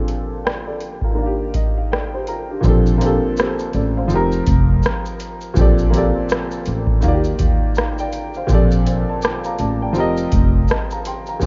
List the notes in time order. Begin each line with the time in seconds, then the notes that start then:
Already playing: A#2 F3 C4 D4 G4 A4 C5 F5
0.08 closed hi-hat
0.45 D5 G5, cross-stick
0.68 A4 D5
0.81 closed hi-hat
1.02 F4 A#4, kick
1.11 D#3 A#3
1.19 D4 F4
1.26 G4
1.54 D#5, kick, closed hi-hat
1.78 F5
1.92 A4 D5 G5, cross-stick
2.14 G4 C5
2.27 F4 A#4 A#5, closed hi-hat
2.51 D4 G4
2.61 A#1 A#2 F3 C4, kick, shaker
2.66 D4 G4 A4
2.87 shaker
2.98 F3 A#3 C4, closed hi-hat, shaker
3.02 D4 G4 A4
3.37 G4 C5, cross-stick, shaker
3.59 shaker
3.73 A1 A4 D5, closed hi-hat, shaker
3.97 C5 F5
4.08 F1 F3 C4 D#4, shaker
4.13 G4 A#4
4.32 shaker
4.46 F1, kick, closed hi-hat, shaker
4.83 cross-stick, shaker
5.06 shaker
5.20 closed hi-hat, shaker
5.41 shaker
5.54 A#1 A#2 F3 C4, kick, shaker
5.58 G4 A4 D5
5.79 shaker
5.90 F3 A#3 C4, closed hi-hat, shaker
5.95 G4 A4 D5
6.29 cross-stick, shaker
6.51 shaker
6.66 A1, closed hi-hat, shaker
6.87 kick
7.00 D#2 D#3 A#3 F4, shaker
7.06 F#4 D5
7.13 G4
7.24 shaker
7.39 D#2, kick, closed hi-hat, shaker
7.75 F5 A#5, cross-stick, shaker
7.98 D5 G5, shaker
8.13 closed hi-hat, shaker
8.34 C5 F5, shaker
8.47 A#1 A#2 F3 C4, kick, shaker
8.52 G4 A4 D5
8.71 shaker
8.87 C5 F5, closed hi-hat, shaker
9.09 D5 A5
9.22 A5 D6, cross-stick, shaker
9.44 F5 A#5, shaker
9.59 A1 D5 A5, closed hi-hat, shaker
9.82 D5 G5
9.93 F1 F3 C4 G4, shaker
9.98 A#4 D#5
10.17 shaker
10.32 F1, kick, closed hi-hat, shaker
10.68 D#5 A5, cross-stick, shaker
10.91 F5 A#5, shaker
11.05 G5 C6, closed hi-hat, shaker
11.26 F5 A#5, shaker
11.39 A#1 A#2 F3 C4, kick, shaker